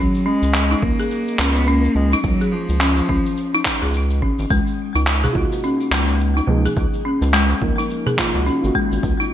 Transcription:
Already playing: F#3 C#4
0.15 shaker
0.26 G#3 C#4
0.42 C#2, shaker
0.54 clap, shaker
0.71 D#4, shaker
0.82 C#2 A#3, kick
0.99 G#4, shaker
1.11 shaker
1.28 shaker
1.39 C#2 C#4, clap
1.55 B3, shaker
1.67 A#3 C#4, shaker
1.85 shaker
1.95 C#2 G#3
2.13 D#4, shaker
2.23 C#2 F#3, kick, shaker
2.41 G#4, shaker
2.52 F3
2.69 C#2, shaker
2.81 C#4, clap, shaker
2.98 shaker
3.09 C#2 C#4, kick
3.26 shaker
3.37 shaker
3.54 D#4, shaker
3.65 kick, clap
3.82 C#2 G#4, shaker
3.94 shaker
4.11 shaker
4.22 G#1 C#4, kick
4.39 G#1, shaker
4.50 C#2 G#3, kick, shaker
4.67 shaker
4.95 C#2 D#4, shaker
5.07 clap, shaker
5.24 G#4, darbuka tek, darbuka dum, shaker
5.33 C#2 A#3 D#4 F4 F#4, kick
5.52 darbuka ka, shaker
5.64 C#4, shaker
5.81 shaker
5.91 C#2 G#3, clap, darbuka tek
6.09 shaker
6.20 shaker
6.36 D#4, darbuka ka, shaker
6.47 C#2 F3 A#3 D#4 G#4, darbuka ka, darbuka dum
6.66 G#4, shaker
6.77 C#2, kick, shaker
6.94 shaker
7.05 C#4
7.21 C#2, darbuka tek, shaker
7.33 G#3, clap, shaker
7.49 darbuka tek, shaker
7.61 C#2 F3 A#3 D#4 A#4, kick
7.78 D#4, darbuka ka, shaker
7.90 shaker
8.06 G#4, darbuka dum, shaker
8.17 F3 A#3 D#4 F4, kick, clap
8.34 C#2 F3 A#3 D#4 F#4, darbuka ka, darbuka tek, shaker
8.46 C#4, shaker
8.62 G#1 A#3 D#4 F4, shaker
8.66 F#4
8.75 G#3, kick
8.92 G#1, shaker
9.03 C#2, kick, shaker
9.20 D#4, shaker

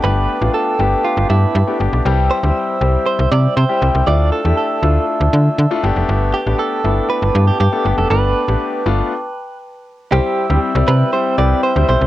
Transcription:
Already playing: B4 G5 A5 D6
0.03 G1 A3 B3 D4 G4 B4
0.41 A1 A3 B3 D4 F4
0.54 A4
0.79 G1 A3 B3 D4 G4
1.05 F4
1.17 G1
1.30 G2 E4
1.55 G2
1.67 A3 B3 D4 G4
1.80 G1 A3 B3 D4 G4
1.93 B1
2.05 C2 G3 C4 E4 G4 C5 E5 E6
2.31 C5
2.43 D2 G3 C4 E4 G4
2.81 C2 G3 C4 E4 G4
3.06 C5
3.19 C2
3.31 C3 D5
3.57 C3 C5
3.69 G3 C4 E4 G4
3.82 C2 G3 C4 E4 G4
3.95 C2
4.07 D2 A3 D4 E4 F4 D5 E5 A5
4.32 A4
4.45 E2 A3 D4 E4 G4
4.57 A4
4.82 D2 A3 D4 E4 F4
5.21 D2
5.33 D3
5.58 D3
5.71 A3 D4 E4 F4
5.83 G1 A3 B3 D4 G4 B4 G5 D6
5.96 F1
6.09 G1
6.34 G4
6.46 A1 A3 B3 D4 G4
6.59 A4
6.84 G1 A3 B3 D4 E4
7.10 B4
7.22 G1
7.35 G2
7.47 G4
7.60 G2 G4
7.72 A3 B3 D4 A4
7.85 G1 A3 B3 D4 G4
7.98 F1 A4
8.10 G1 A3 B3 D4 A4 B4
8.48 A1 A3 B3 D4 G4
8.86 G1 A3 B3 D4 F4
10.12 C2 G3 C4 E4 G4 C5 E5 G5 E6
10.50 D2 G3 C4 E4 G4 C5
10.75 C2 G3 C4 E4 G4 D5
10.88 C3 B4
11.13 G3 C4 E4 G4 C5
11.38 C2 G3 C4 E4 G4 B4 D5
11.63 C5
11.76 D2 G3 C4 E4 G4 C5
11.89 B1 C5
12.01 C2

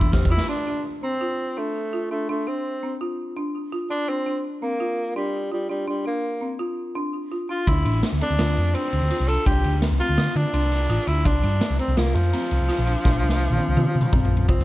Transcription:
Already playing: E4
0.01 E2, kick
0.12 C4 G4, kick, snare
0.22 E2, kick
0.30 E4 F4
0.37 snare
0.49 D4
0.67 D4
1.03 C4
1.21 F4
1.57 A3 D4
1.93 F4
2.11 A3 D4
2.29 A3 D4
2.47 C4 D4
2.83 C4
3.01 F4
3.37 D4
3.72 F4
3.90 D4
4.08 C4 D4
4.26 D4
4.62 A#3 C4
4.80 F4
5.16 G3 D4
5.52 G3 F4
5.69 G3 D4
5.88 G3 D4
6.06 A#3 D4
6.41 C4
6.59 F4
6.95 D4
7.32 F4
7.49 D4 F4
7.67 D2 D4 E4, kick, ride
7.85 A1 D4, ride
8.03 snare, ride
8.13 D2
8.21 C4 D4, ride
8.30 D2
8.39 D2 F4, snare, ride
8.57 F2, ride
8.75 C4 D4, ride
8.93 D2, ride
9.02 D2
9.10 F4, ride
9.20 C2
9.28 D4 A4, ride
9.46 C2 D4 G4, kick, ride
9.64 D2 D4, ride
9.82 snare, ride
9.91 C2
10.00 C4 F4, ride
10.09 D2
10.18 D3 F4, snare, ride
10.36 D3 D4, ride
10.54 C2 D4, ride
10.72 snare, ride
10.89 A1 F4, ride
11.07 D2 D4 E4, ride
11.25 C2 D4, kick, ride
11.43 G2 D4, ride
11.61 snare, ride
11.70 C2
11.79 C4, ride
11.88 C2
11.97 C2 A#3 F4, snare, ride
12.15 F2 F3, ride
12.33 C4, snare, ride
12.51 C2, ride
12.61 C2
12.69 F4, snare, ride
12.78 A#1
12.86 D4, ride
13.04 A#1 D4, kick, snare
13.23 C2 D4
13.29 snare
13.50 A#1, high tom
13.59 C4
13.68 C2
13.77 C3 F4, high tom
13.95 C3
14.01 mid tom
14.13 A#1 C4, kick, mid tom
14.25 mid tom
14.37 mid tom
14.48 C2 C4 F4, kick, floor tom
14.61 floor tom

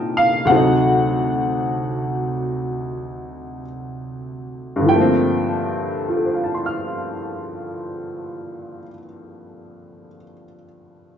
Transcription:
Already playing: C2 A#2 C3 D#3 A#3 C4 D#4 A#4 D#5 G5 A5
0.17 F5
0.45 D2 C3 F#5
0.51 F#3 A4 C5
0.56 D#4
4.76 G2
4.81 D3
4.86 F3 G5
4.91 A3
4.96 A#3
5.01 C4
6.09 F4
6.17 A4
6.25 C5
6.34 F5
6.44 A5
6.54 C6
6.66 F6

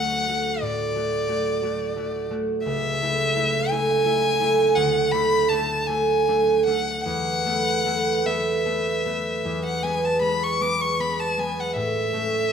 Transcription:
Already playing: D2 A3 F#4 F#5
0.29 A3 F#4
0.62 A2 D5
0.95 A3 F#4
1.28 A3 F#4
1.63 A3 F#4
1.96 A3 F#4
2.30 A3 F#4
2.65 C#2 E5
3.02 A3 E4 A4
3.36 A3 E4 A4
3.70 A3 E4 A4 G#5
4.05 A3 E4 A4
4.40 A3 E4 A4
4.75 D2 F#5
5.11 A3 D4 B5
5.16 A4
5.49 A3 D4 A4 A5
5.87 A3 D4 A4 G#5
6.28 A3 D4 A4
6.66 A3 D4 A4 F#5
7.04 E2 F#5
7.45 A3 B3 A4
7.85 A3 B3 A4
8.24 A3 B3 A4 E5
8.65 A3 B3 A4
9.05 A3 B3 A4
9.45 E2
9.65 F#5
9.83 G#3 B3 B4 G#5
10.05 A5
10.21 G#3 B3 B4 B5
10.43 C#6
10.60 G#3 B3 B4 D6
10.81 C#6
10.99 G#3 B3 B4 B5
11.20 A5
11.37 G#3 B3 B4 G#5
11.60 F#5
11.76 A2 E5
12.13 A3 C#4 A4

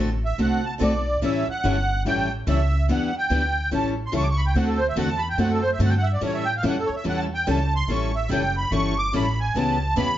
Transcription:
Already playing: A1
0.25 E5
0.38 C2 D3 A3 C4 F#4 A4 F#5
0.65 A5
0.78 B1 D3 A3 C4 F#4 A4
0.82 D5
1.21 A1 E3 G3 C#4 E4 A4 E5
1.48 F#5, muted upright bass stroke
1.64 G1 E3 G3 C#4 E4 A4
2.05 A1 E3 G3 C#4 E4 A4 G5
2.47 C#2 E3 G3 C#4 E4 A4 E5
2.88 E2 E3 G3 B3 D4 E4 G4 B4 F#5
3.18 G5
3.30 D2 E3 G3 B3 D4 E4 G4 B4
3.71 A1 E3 G3 C#4 E4 A4 A5
4.06 C6
4.13 C#2 E3 G3 C#4 E4 A4 C#6
4.23 D6
4.30 C#6
4.37 B5
4.47 G5
4.54 D2 D3 A3 C4 F#4 A4 F#5
4.67 A4
4.77 C5
4.88 E5
4.96 E2 D3 A3 C4 F#4 A4 F#5
5.08 A5
5.18 B5
5.30 G5
5.37 F#2 D3 A3 C4 F#4 A4 F#5
5.50 A4
5.61 C5
5.72 E5
5.79 G2 D3 A3 C4 F#4 A4
5.83 F#5
5.90 G5
5.97 F#5
6.03 E5
6.13 D5
6.21 A2 E3 G3 C#4 E4 A4 C#5
6.34 E5
6.45 G5
6.57 F5
6.62 F2 E3 G3 C#4 E4 A4
6.67 F#5
6.78 A4
6.86 C#5, muted upright bass stroke
6.96 E5
7.05 E2 E3 G3 C#4 E4 A4
7.09 F#5
7.17 A5
7.34 G5
7.47 C#2 E3 G3 C#4 E4 A4 A5
7.76 C6
7.87 A1 E3 G3 C#4 E4 A4 C#6
8.15 E5
8.29 F#1 E3 G3 C#4 E4 A4 G5
8.57 B5
8.71 G1 E3 G3 C#4 E4 A4 C#6
8.99 D6
9.12 A1 E3 G3 C#4 E4 A4 B5
9.40 G#5
9.54 C#2 C#3 E3 G3 B3 C#4 E4 G4 B4 A5
9.96 E2 C#3 E3 G3 B3 C#4 E4 G4 B4 B5

